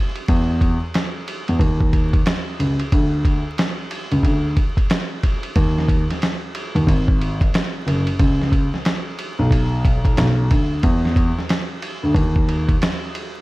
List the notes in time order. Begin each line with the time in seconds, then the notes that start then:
0.16 ride
0.28 E2, kick, ride
0.61 kick, ride
0.94 snare, hi-hat pedal, ride
1.28 ride
1.48 E2, ride
1.59 D#2, kick, ride
1.81 kick
1.93 kick, ride
2.13 kick, ride
2.26 snare, hi-hat pedal, ride
2.60 C#2, ride
2.80 ride
2.92 D2, kick, ride
3.25 kick, ride
3.58 snare, hi-hat pedal, ride
3.91 ride
4.12 C#2, ride
4.23 D2, kick, ride
4.57 kick, ride
4.77 kick, ride
4.90 snare, hi-hat pedal, ride
5.23 kick, ride
5.43 ride
5.56 D#2, kick, ride
5.78 snare
5.89 kick, ride
6.10 snare, ride
6.22 snare, hi-hat pedal, ride
6.55 ride
6.75 D#2, ride
6.87 G#1, kick, ride
7.08 kick
7.21 ride
7.41 kick, ride
7.54 snare, hi-hat pedal, ride
7.87 F#1, ride
8.07 ride
8.19 C#2, kick, ride
8.42 snare
8.52 kick, ride
8.74 snare
8.85 snare, hi-hat pedal, ride
9.19 ride
9.39 B1
9.51 kick, ride
9.85 kick, ride
10.05 kick, ride
10.17 B1, snare, hi-hat pedal, ride
10.51 D2, kick, ride
10.83 E2, kick, ride
11.05 snare
11.16 kick, ride
11.38 snare
11.49 snare, hi-hat pedal, ride
11.82 ride
12.03 D2
12.14 D#2, kick, ride
12.36 kick
12.49 ride
12.69 kick, ride
12.82 snare, hi-hat pedal, ride
13.15 ride